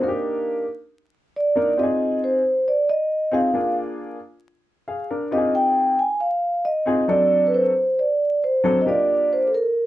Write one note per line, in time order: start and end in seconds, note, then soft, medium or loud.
0.01 0.62 A#3 medium
0.01 0.63 D4 medium
0.01 0.63 D#4 medium
0.01 0.07 F#4 medium
0.01 0.65 A#4 medium
0.08 0.66 G4 medium
1.36 1.81 D5 medium
1.55 1.71 A#3 medium
1.55 1.71 D4 medium
1.55 1.72 D#4 medium
1.55 1.72 A#4 medium
1.77 2.39 C4 medium
1.77 2.39 D#4 medium
1.77 2.39 F4 medium
1.77 1.83 G4 medium
1.77 2.20 D#5 medium
1.83 2.42 G#4 medium
2.24 2.69 C5 medium
2.68 2.88 D5 medium
2.89 3.34 D#5 medium
3.31 3.47 C4 medium
3.31 3.48 D#4 medium
3.31 3.48 F4 medium
3.31 3.48 G#4 medium
3.31 3.75 F5 medium
3.54 4.16 A#3 medium
3.54 4.16 D4 medium
3.54 4.16 F4 medium
3.54 4.16 G#4 medium
4.88 5.09 G#4 soft
4.88 5.09 F5 medium
5.10 5.52 D4 medium
5.10 5.52 A#4 medium
5.31 5.93 C4 medium
5.31 5.93 D#4 medium
5.31 5.93 F4 medium
5.31 5.38 G4 medium
5.31 5.53 D#5 medium
5.38 5.96 G#4 medium
5.55 6.00 G5 medium
5.99 6.19 G#5 medium
6.21 6.66 F5 medium
6.65 7.10 D#5 medium
6.86 7.02 C4 medium
6.86 7.02 D#4 medium
6.86 7.02 F4 medium
6.86 7.02 G#4 medium
7.08 7.70 F#3 medium
7.08 7.70 C4 medium
7.08 7.70 D4 medium
7.08 7.70 F#4 medium
7.08 7.70 A4 medium
7.08 7.44 D5 loud
7.47 7.54 B4 medium
7.54 7.99 C5 medium
7.99 8.40 D5 medium
8.44 8.81 C5 medium
8.64 8.79 F#3 medium
8.64 8.79 C4 medium
8.64 8.80 D4 medium
8.64 8.80 F#4 medium
8.64 8.80 A4 medium
8.81 9.47 A#3 medium
8.81 8.87 D#5 medium
8.86 9.48 D4 medium
8.86 9.48 F4 medium
8.86 9.48 G4 medium
8.86 9.29 D5 medium
9.33 9.47 C5 medium
9.47 9.54 A4 medium
9.54 9.86 A#4 medium